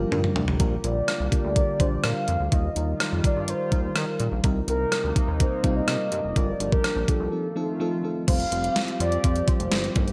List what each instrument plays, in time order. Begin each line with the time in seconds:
Already playing: analog synth pad F3 A#3 G4, fm electric piano G3 D4 F4 A#4
0.11 analog synth bass G2, fm electric piano G3 D4 F4 A#4 A#5, mid tom
0.24 mid tom
0.35 analog synth bass D2, fm electric piano G3 D4 F4 A#4 G5, floor tom
0.48 analog synth bass A1, floor tom
0.59 analog synth bass A#1, analog synth pad D3 A#3 G4, fm electric piano G3 D4 F4 A#4, kick, closed hi-hat
0.83 analog synth bass A#1, fm electric piano G3 D4 F4 A#4, soft synth lead D5, closed hi-hat
1.07 fm electric piano G3 D4 F4 A#4, cross-stick, closed hi-hat
1.20 analog synth bass C2
1.31 fm electric piano G3 D4 F4 A#4, soft synth lead D5, kick, closed hi-hat
1.44 analog synth bass D2
1.55 fm electric piano G3 D4 F4 A#4, kick, closed hi-hat
1.79 analog synth bass A#1, fm electric piano G3 D4 F4 C5, kick, closed hi-hat
2.03 analog synth bass A#2, fm electric piano G3 D4 F4 A#4, soft synth lead F5, cross-stick, closed hi-hat
2.28 analog synth bass F2, fm electric piano G3 D4 F4 A#4, closed hi-hat
2.40 analog synth bass D2
2.51 analog synth bass D#2, analog synth pad D#3 G3 F4, fm electric piano G3 D#4 F4 A#4, soft synth lead D#5, kick, closed hi-hat
2.76 analog synth bass D#2, fm electric piano G3 D#4 F4 A#4, closed hi-hat
3.00 fm electric piano G3 D#4 F4 A#4, cross-stick, closed hi-hat
3.13 analog synth bass F2
3.23 fm electric piano G3 D#4 F4 A#4, soft synth lead D5, kick, closed hi-hat
3.36 analog synth bass G2
3.47 fm electric piano G3 D#4 F4 A#4, soft synth lead C5, closed hi-hat
3.71 analog synth bass D#2, fm electric piano G3 D#4 F4 A#4, kick, closed hi-hat
3.95 analog synth bass D#3, fm electric piano G3 D#4 F4 A#4, soft synth lead A#4, cross-stick, closed hi-hat
4.20 analog synth bass A#2, fm electric piano G3 D#4 F4 G4, closed hi-hat
4.32 analog synth bass A#1
4.43 analog synth bass C2, analog synth pad C3 A#3 D#4, fm electric piano G3 C4 D#4 A#4, kick, closed hi-hat
4.67 analog synth bass C2, fm electric piano G3 C4 D#4 A#4, soft synth lead A#4, closed hi-hat
4.92 fm electric piano G3 C4 D#4 A#4, cross-stick, closed hi-hat
5.04 analog synth bass D2
5.15 fm electric piano G3 C4 D#4 A#4, soft synth lead A#4, kick, closed hi-hat
5.28 analog synth bass D#2
5.39 fm electric piano G3 C4 D#4 A#4, soft synth lead C5, kick, closed hi-hat
5.63 analog synth bass C2, fm electric piano G3 C4 D#4 F4, kick, closed hi-hat
5.77 soft synth lead D#5
5.87 analog synth bass C3, fm electric piano G3 C4 D#4 A#4, cross-stick, closed hi-hat
6.11 analog synth bass G2, fm electric piano G3 C4 D#4 A#4, soft synth lead D#5, closed hi-hat
6.24 analog synth bass F1
6.35 analog synth bass G1, analog synth pad F3 G4, fm electric piano G3 D4 F4 A#4, soft synth lead D5, kick, closed hi-hat
6.60 analog synth bass G1, fm electric piano G3 D4 F4 A#4, closed hi-hat
6.72 soft synth lead A#4, kick
6.84 fm electric piano G3 D4 F4 A#4, cross-stick, closed hi-hat
6.96 analog synth bass A#1
7.08 fm electric piano G3 D4 F4 A#4, soft synth lead A4, kick, closed hi-hat
7.20 analog synth bass C2
7.32 analog synth pad D#3 A3 F4, fm electric piano F3 C4 D#4 A4
7.56 fm electric piano F3 C4 D#4 A4
7.80 fm electric piano F3 C4 D#4 A4
8.04 fm electric piano F3 C4 D#4 A4
8.27 analog synth bass F1, analog synth pad F3 C4 G4, fm electric piano G3 C4 F4 C5, soft synth lead F5, kick, closed hi-hat, crash
8.40 closed hi-hat
8.51 analog synth bass F1, fm electric piano G3 C4 F4 C5, closed hi-hat
8.64 closed hi-hat
8.75 fm electric piano G3 C4 F4 C5, snare, closed hi-hat
8.88 closed hi-hat
8.99 analog synth bass F2, fm electric piano G3 C4 F4 C5, soft synth lead D5, closed hi-hat
9.12 closed hi-hat
9.23 analog synth bass F2, fm electric piano G3 C4 F4 C5, kick, closed hi-hat
9.36 closed hi-hat
9.47 fm electric piano G3 C4 F4 C5, soft synth lead C5, kick, closed hi-hat
9.60 analog synth bass F1, closed hi-hat
9.71 analog synth bass G1, fm electric piano G3 C4 F4 C5, snare, closed hi-hat
9.84 closed hi-hat
9.95 analog synth bass G1, analog synth pad D#3 A#3 G4, fm electric piano G3 A#3 D#4 A#4, kick, closed hi-hat
10.08 closed hi-hat